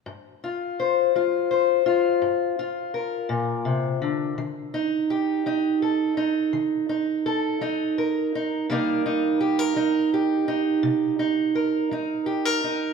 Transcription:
\new Staff \with { instrumentName = "Steel-string acoustic guitar" } { \time 12/8 \key g \minor \tempo 4. = 56 << { r8 f'8 c''8 f'8 c''8 f'4 f'8 bes'2 | r8 ees'8 g'8 ees'8 a'8 ees'4 ees'8 a'8 ees'8 bes'8 ees'8 | <g bes ees' bes'>8 ees'8 g'16 bes'16 ees'8 g'8 ees'4 ees'8 bes'8 ees'8 g'16 bes'16 ees'8 | } \\ { g,4 r8 g4 r8 g,4 r8 bes,8 c8 d8 | ees4 r8 g4 r8 ees4 r8 g4 r8 | c4 r8 g4 r8 c4 r8 g4 r8 | } >> }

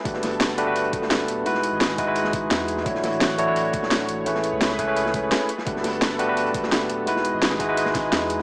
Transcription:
<<
  \new Staff \with { instrumentName = "Analog synth pad" } { \time 4/4 \key g \lydian \tempo 4 = 171 << { b1 | dis''1 | cis''1~ | cis''2.~ cis''8 b8~ |
b1 | dis''1 | } \\ { a'1 | gis'1 | <e fis'>1 | <gis' b'>2.~ <gis' b'>8 a'8~ |
a'1 | gis'1 | } >> }
  \new Staff \with { instrumentName = "Tine electric piano" } { \time 4/4 \key g \lydian <a d' fis' g' b'>4. <a d' fis' g' b'>16 <a d' fis' g' b'>16 r2 | <gis dis' e' fis' b'>4. <gis dis' e' fis' b'>16 <gis dis' e' fis' b'>16 r2 | <a d' e' fis' cis''>4. <a d' e' fis' cis''>16 <a d' e' fis' cis''>16 r2 | <a cis' e' gis' b'>4. <a cis' e' gis' b'>16 <a cis' e' gis' b'>16 r2 |
<a d' fis' g' b'>4. <a d' fis' g' b'>16 <a d' fis' g' b'>16 r2 | <gis dis' e' fis' b'>4. <gis dis' e' fis' b'>16 <gis dis' e' fis' b'>16 r2 | }
  \new Staff \with { instrumentName = "Sub bass" } { \clef bass \time 4/4 \key g \lydian g,,2.~ g,,8 d,,8 | e,,8. gis,,2~ gis,,16 e,4 | d,,2.~ d,,8 a,,8 | a,,8. cis,2~ cis,16 r4 |
g,,2.~ g,,8 d,,8 | e,,8. gis,,2~ gis,,16 e,4 | }
  \new DrumStaff \with { instrumentName = "Drums" } \drummode { \time 4/4 <hh bd>16 sn16 <hh hho sn>16 hh16 <hh sn>8 hh8 hh16 hh16 <hh bd>16 sn16 <hh sn>16 hh16 hh8 | hh16 sn16 hh8 <hh sn>16 sn16 <hh bd>8 hh16 sn16 <hh bd>8 <hh sn>8 hh16 sn16 | <hh bd>16 sn16 <hh hho sn>16 hh16 <hh sn>8 hh8 hh8 <hh bd>16 sn16 <hh sn>16 hh16 hh8 | hh16 sn16 hh8 <hh sn>16 sn16 <hh bd>8 hh16 sn16 <hh bd>8 <hh sn>8 hh16 sn16 |
<hh bd>16 sn16 <hh hho sn>16 hh16 <hh sn>8 hh8 hh16 hh16 <hh bd>16 sn16 <hh sn>16 hh16 hh8 | hh16 sn16 hh8 <hh sn>16 sn16 <hh bd>8 hh16 sn16 <hh bd sn>8 <hh sn>8 hh8 | }
>>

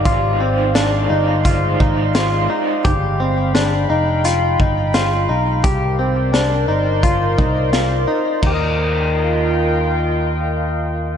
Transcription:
<<
  \new Staff \with { instrumentName = "Ambient pad" } { \time 4/4 \key ees \major \tempo 4 = 86 << { <d'' f'' c'''>1 | <g'' b''>1 | <c'' d'' c'''>1 | <f' bes' ees'' f'' g''>1 | } \\ { aes1~ | aes1 | bes'1 | r1 | } >> }
  \new Staff \with { instrumentName = "Overdriven electric guitar" } { \time 4/4 \key ees \major <aes ees' f' c''>8 <ees' f' c''>8 <aes ees' f' c''>8 <ees' f' c''>8 <aes ees' f' c''>8 <ees' f' c''>8 <aes ees' f' c''>8 <ees' f' c''>8 | r1 | r1 | r1 | }
  \new Staff \with { instrumentName = "Clean electric guitar" } { \time 4/4 \key ees \major f'8 c'8 d'8 ees'8 f'8 ees'8 f'8 ees'8 | g'8 c'8 d'8 ees'8 f'8 ees'8 f'8 ees'8 | g'8 c'8 d'8 ees'8 f'8 ees'8 f'8 ees'8 | <ees' g' bes' ees''>1 | }
  \new Staff \with { instrumentName = "Picked electric bass" } { \clef bass \time 4/4 \key ees \major r4. g,,4 aes,,4 r8 | g,,4. f,,4 g,,4 b,,8 | c,4. g,,4 c,4 r8 | ees,1 | }
  \new DrumStaff \with { instrumentName = "Drums" } \drummode { \time 4/4 <hh bd>4 <hh sn>4 <hh bd>8 bd8 <hh sn>4 | <hh bd>4 <hh sn>4 hh8 bd8 <hh sn>4 | <hh bd>4 <hh sn>4 <hh bd>8 bd8 <hh sn>4 | <cymc bd>4 r4 r4 r4 | }
>>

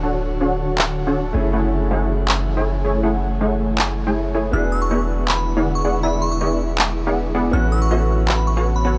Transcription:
<<
  \new Staff \with { instrumentName = "Synth bell" } { \time 4/4 \key fis \minor \tempo 4 = 160 r1 | r1 | r1 | fis'''8 e'''16 cis'''16 cis'''16 r8. b''16 b''16 r8. cis'''8 r16 |
b''8 cis'''16 cis'''16 cis'''16 r2 r8. | fis'''8 e'''16 cis'''16 cis'''16 r8. b''16 b''16 cis'''16 cis'''16 r16 b''8 r16 | }
  \new Staff \with { instrumentName = "Supersaw synth" } { \time 4/4 \key fis \minor <d' fis' a' cis'' fis''>4 <d' fis' a' cis'' fis''>4.~ <d' fis' a' cis'' fis''>16 <d' fis' a' cis'' a''>8. <a e' gis' cis'' gis''>8 | <a e' gis' cis'' fis''>4 <a e' gis' cis'' fis''>4.~ <a e' gis' cis'' fis''>16 <a e' gis' cis'' gis''>8. <a e' gis' cis'' gis''>8 | <a e' gis' cis'' fis''>4 <a e' gis' cis'' fis''>4.~ <a e' gis' cis'' fis''>16 <a e' gis' cis'' gis''>8. <a e' gis' cis'' gis''>8 | <b e' gis' d'' e''>4 <b e' gis' d'' e''>4.~ <b e' gis' d'' e''>16 <b e' gis' d'' fis''>8. <b e' gis' d'' fis''>8 |
<b e' gis' d'' e''>4 <b e' gis' d'' e''>4.~ <b e' gis' d'' e''>16 <b e' gis' d'' fis''>8. <b e' gis' d'' fis''>8 | <b fis' a' cis'' e''>4 <b fis' a' cis'' e''>4.~ <b fis' a' cis'' e''>16 <b fis' a' cis'' fis''>8. <b fis' a' cis'' fis''>8 | }
  \new Staff \with { instrumentName = "Grand piano" } { \time 4/4 \key fis \minor <a e' fis' cis''>2.~ <a e' fis' cis''>8 <a cis' e' gis'>8~ | <a cis' e' gis'>1~ | <a cis' e' gis'>2.~ <a cis' e' gis'>8 r8 | <b d' fis' gis'>1~ |
<b d' fis' gis'>1 | <b cis' e' fis'>1 | }
  \new Staff \with { instrumentName = "Ambient pad" } { \time 4/4 \key fis \minor <d fis' cis''>2.~ <d fis' cis''>8 <e a gis'>8~ | <e a gis'>1~ | <e a gis'>1 | <d gis e'>1~ |
<d gis e'>1 | <cis b fis'>1 | }
  \new Staff \with { instrumentName = "808-style bass" } { \clef bass \time 4/4 \key fis \minor d,,2.~ d,,8 fis,,8~ | fis,,1~ | fis,,1 | e,,1~ |
e,,1 | a,,1 | }
  \new DrumStaff \with { instrumentName = "Drums" } \drummode { \time 4/4 r4 r4 hc4 r4 | r4 r4 hc4 r4 | r4 r4 hc4 r4 | r4 r4 hc4 r4 |
r4 r4 hc4 r4 | r4 r4 hc4 r4 | }
>>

